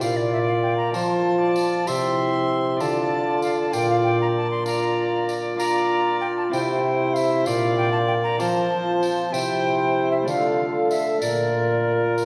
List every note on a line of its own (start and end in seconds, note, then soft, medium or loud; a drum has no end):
0.00 0.97 A#2 medium
0.00 0.96 A#2 medium
0.00 0.95 D4 soft
0.00 0.91 F4 medium
0.00 0.92 F4 medium
0.00 0.96 A#4 soft
0.00 0.96 D5 medium
0.00 0.18 F5 loud
0.00 tambourine medium
0.17 0.32 D5 medium
0.33 0.39 E5 loud
0.47 0.53 F5 medium
0.63 0.77 G5 medium
0.77 0.92 A#5 loud
0.91 1.90 F3 medium
0.91 2.81 C4 medium
0.91 1.89 F4 medium
0.91 1.88 F4 medium
0.91 1.85 C5 medium
0.91 1.89 A5 loud
0.91 tambourine medium
0.95 1.88 F3 medium
0.95 1.40 C5 medium
1.41 1.89 D5 medium
1.56 tambourine medium
1.85 2.84 C3 medium
1.85 2.83 C3 medium
1.85 2.82 E4 medium
1.85 2.82 G4 medium
1.85 2.80 G4 medium
1.85 2.83 C5 medium
1.85 2.80 E5 medium
1.85 2.82 C6 loud
1.85 tambourine medium
2.76 3.69 D4 medium
2.76 3.71 F4 medium
2.76 3.72 F4 medium
2.76 3.72 D5 medium
2.76 3.72 F5 medium
2.76 tambourine medium
2.81 3.76 D3 medium
2.81 3.73 D3 medium
2.81 3.43 A5 loud
3.42 3.58 F5 medium
3.42 tambourine medium
3.60 3.75 A5 loud
3.71 6.21 A#2 medium
3.71 6.55 A#2 medium
3.71 4.62 D4 medium
3.71 4.64 F4 medium
3.71 4.38 F4 medium
3.71 4.64 D5 medium
3.71 4.65 F5 soft
3.71 3.89 G5 loud
3.71 tambourine medium
3.90 3.96 F5 medium
4.05 4.20 G5 loud
4.22 4.28 A#5 medium
4.37 4.50 A5 medium
4.51 4.66 C6 medium
4.63 5.54 D4 medium
4.63 5.55 F4 medium
4.63 5.58 D5 medium
4.63 5.57 F5 medium
4.63 5.31 A#5 loud
4.63 tambourine medium
5.29 tambourine medium
5.56 6.53 D4 medium
5.56 6.54 F4 medium
5.56 6.53 F4 medium
5.56 6.54 F5 medium
5.56 6.17 A#5 loud
5.56 tambourine medium
5.60 6.51 D5 medium
6.21 6.27 G5 medium
6.37 6.43 A5 medium
6.49 7.42 C3 medium
6.49 7.49 C3 medium
6.49 7.47 C4 medium
6.49 7.47 E4 medium
6.49 7.46 E4 medium
6.49 7.48 C5 medium
6.49 7.15 G5 loud
6.53 7.48 C5 medium
6.53 tambourine medium
7.14 7.47 E5 loud
7.14 7.18 F5 medium
7.14 tambourine medium
7.42 8.40 D4 medium
7.42 8.37 F4 medium
7.42 8.39 F5 medium
7.42 7.77 F5 loud
7.42 tambourine medium
7.47 8.43 A#2 medium
7.47 8.41 A#2 medium
7.47 8.41 D5 medium
7.78 7.92 G5 loud
7.92 7.98 A5 medium
8.08 8.14 G5 medium
8.24 8.39 A#5 loud
8.37 9.35 F3 medium
8.37 9.37 F3 medium
8.37 9.29 C4 medium
8.37 9.31 F4 medium
8.37 9.35 F4 medium
8.37 9.33 C5 medium
8.37 9.36 F5 medium
8.37 9.34 A5 loud
8.37 tambourine medium
9.03 tambourine medium
9.30 10.30 C3 medium
9.30 10.28 C4 medium
9.30 10.28 E4 medium
9.30 10.29 G4 medium
9.30 10.29 E5 medium
9.30 10.11 G5 loud
9.34 10.29 C3 medium
9.34 10.26 C5 medium
9.34 tambourine medium
10.11 10.17 E5 medium
10.22 11.24 D3 medium
10.22 11.22 A3 medium
10.22 11.18 D4 soft
10.22 11.20 D5 medium
10.27 11.22 D3 medium
10.27 10.94 F4 medium
10.27 11.24 A4 medium
10.27 10.90 F5 medium
10.27 tambourine medium
10.91 11.20 E5 medium
10.91 tambourine medium
11.18 12.25 A#3 soft
11.18 12.25 D4 soft
11.18 12.25 F4 medium
11.18 12.15 D5 medium
11.18 12.25 D5 soft
11.22 12.25 A#2 medium
11.22 12.25 A#4 medium
11.22 tambourine medium
12.18 tambourine medium